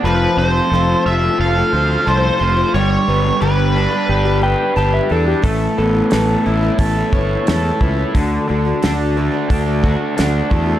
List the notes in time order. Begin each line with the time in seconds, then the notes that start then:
0.04 F1 F2 C3 F3 A3 C4 F4 B4
0.37 F1 F3 A3 C4 C5
0.41 F4
0.55 F3 A3 C4 F4
0.70 F1 F2 C3 A3 A4
0.74 F3 C4 F4
1.06 F1 F3 A3 C4 F4 E5
1.23 F3 A3 C4 F4
1.39 F1 A4 F5
1.57 F3 A3 C4 F4
1.73 D2 F3 A3 C4 F4 C5
2.06 C2 F2 C3 F3 A3 C4 F4 A4 C5
2.39 F1 F3 A3 C4 F4
2.57 F3 A3 C4 F4
2.74 G1 G2 D3 G3 B3 D4 G4 C#5
3.07 G1 G3 B3 D4 G4
3.24 G3 B3 D4 G4
3.41 G1 G2 D3 G3 B3 D4 G4 B4
3.76 G3 B3 D4 G4
3.91 G3 B3 D4 G4
4.09 G1 G4
4.25 G3 B3 D4 G4
4.41 G3 B3 D4 G4 B4 G5
4.76 G1 G2 D3 G3 B3 D4 G4 A5
4.94 E5
5.09 E2 G3 B3 D4 G4 A4
5.28 G4
5.42 A1 A2 E3 A3 B3 C#4 E4 A4, kick, open hi-hat
5.77 A1 E3 B3 C#4 E4 A4
5.94 B3 C#4 E4
6.11 A1 A2 E3 B3 C#4 E4 A4, snare, open hi-hat
6.43 A1 E3 B3 C#4 E4
6.62 B3 C#4 E4
6.79 A1 A4, kick, open hi-hat
6.97 B3 C#4 E4
7.13 G1 E3 B3 C#4 E4 C#5, kick
7.47 E2 A2 E3 B3 C#4 E4 A4, snare, open hi-hat
7.80 C#2 E3 B3 C#4 E4, kick
7.97 B3 C#4 E4
8.14 D2 D3 A3 D4 F#4, kick, open hi-hat
8.48 D2 D3 A3 D4 F#4
8.65 A3 D4 F#4
8.82 D2 D3 A3 D4 F#4, snare, open hi-hat
9.17 D3 A3 D4 F#4
9.32 A3 D4 F#4
9.49 D2 D4, kick, open hi-hat
9.66 A3 D4 F#4
9.83 D3 A3 D4 F#4, kick
10.17 D2 D3 A3 D4 F#4, snare, open hi-hat
10.50 E2 D3 A3 D4 F#4, kick
10.66 A3 D4 F#4